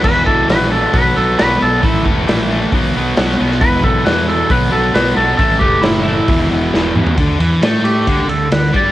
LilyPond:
<<
  \new Staff \with { instrumentName = "Electric slide guitar" } { \time 4/4 \key e \minor \tempo 4 = 134 b'8 a'8 b'8 a'8 b'8 a'8 b'8 a'8 | e'8 r2. r8 | b'8 a'8 b'8 a'8 b'8 a'8 b'8 a'8 | a'8 g'8 e'8 e'2~ e'8 |
r4. g'4 a'8 b'8 d''8 | }
  \new Staff \with { instrumentName = "Distorted electric guitar" } { \clef bass \time 4/4 \key e \minor <e, b, e>8 <e, b, e>8 <e, b, e>8 <e, b, e>8 <b, fis b>8 <b, fis b>8 <b, fis b>8 <b, fis b>8 | <a, e a>8 <a, e a>8 <a, e a>8 <a, e a>8 <b, fis b>8 <b, fis b>8 <b, fis b>8 <b, fis b>8 | <e, b, e>8 <e, b, e>8 <e, b, e>8 <e, b, e>8 <b, fis b>8 <b, fis b>8 <b, fis b>8 <b, fis b>8 | <a, e a>8 <a, e a>8 <a, e a>8 <a, e a>8 <e, b, e>8 <e, b, e>8 <e, b, e>8 <e, b, e>8 |
d8 e8 a4 d8 d8 d8 g8 | }
  \new Staff \with { instrumentName = "Fingered electric bass" } { \clef bass \time 4/4 \key e \minor e,,8 b,,8 ais,,4 b,,8 b,,8 b,,8 b,,8 | a,,8 e,,8 ais,,4 b,,8 b,,8 b,,8 b,,8 | e,,8 b,,8 e,4 b,,8 b,,8 b,,8 b,,8 | a,,8 e,,8 fis,,4 e,,8 e,,8 e,,8 e,8 |
d,8 e,8 a,4 d,8 d,8 d,8 g,8 | }
  \new DrumStaff \with { instrumentName = "Drums" } \drummode { \time 4/4 <cymc bd>8 bd8 <hho sn>4 <hho bd>4 <hho sn>4 | <hho bd>8 bd8 <hho sn>4 <hho bd>4 <hho sn>8. sn16 | <hho bd>8 bd8 <hho sn>4 <hho bd>4 <hho sn>4 | <hho bd>8 bd8 <hho sn>4 <hho bd>4 sn8 toml16 tomfh16 |
<bd cymr>8 cymr8 <cymr sn>8 cymr8 <bd cymr>8 cymr8 <cymr sn>8 <bd cymr>8 | }
>>